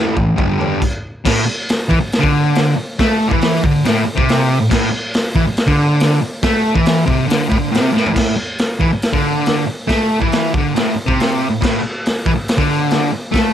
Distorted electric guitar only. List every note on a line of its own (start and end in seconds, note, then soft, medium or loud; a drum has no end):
0.00 0.15 A2 loud
0.00 0.15 E3 medium
0.00 0.16 A3 loud
0.17 0.36 A2 medium
0.17 0.36 E3 medium
0.36 0.58 G2 medium
0.36 0.58 D3 loud
0.36 0.58 G3 loud
0.59 0.80 G2 medium
0.59 0.80 D3 medium
0.59 0.81 G3 loud
1.25 1.45 A2 loud
1.46 muted distorted electric guitar stroke medium
1.89 2.00 E3 loud
2.01 muted distorted electric guitar stroke medium
2.19 2.75 D3 loud
2.76 muted distorted electric guitar stroke medium
2.99 3.31 A3 loud
3.28 3.61 E3 loud
3.64 3.84 D3 loud
3.85 4.04 A2 loud
4.05 muted distorted electric guitar stroke medium
4.15 4.59 C3 loud
4.60 4.68 A2 medium
4.69 4.89 A2 loud
4.91 muted distorted electric guitar stroke medium
5.35 5.46 E3 loud
5.47 muted distorted electric guitar stroke medium
5.67 6.21 D3 loud
6.22 muted distorted electric guitar stroke medium
6.44 6.76 A3 loud
6.74 7.06 E3 loud
7.06 7.27 C3 loud
7.28 7.49 D3 loud
7.49 7.59 A2 medium
7.59 7.71 D3 loud
7.72 7.81 A2 loud
7.81 7.93 C3 medium
7.93 8.12 A2 loud
8.14 8.36 A2 medium
8.37 muted distorted electric guitar stroke medium
8.80 8.91 E3 loud
8.93 muted distorted electric guitar stroke medium
9.12 9.66 D3 loud
9.67 muted distorted electric guitar stroke medium
9.88 10.20 A3 loud
10.20 10.52 E3 loud
10.54 10.75 D3 loud
10.75 10.95 A2 loud
10.96 muted distorted electric guitar stroke medium
11.06 11.50 C3 loud
11.50 11.60 A2 medium
11.61 11.82 A2 loud
11.83 muted distorted electric guitar stroke medium
12.26 12.35 E3 loud
12.36 muted distorted electric guitar stroke medium
12.58 13.12 D3 medium
13.12 muted distorted electric guitar stroke medium
13.31 13.53 A3 loud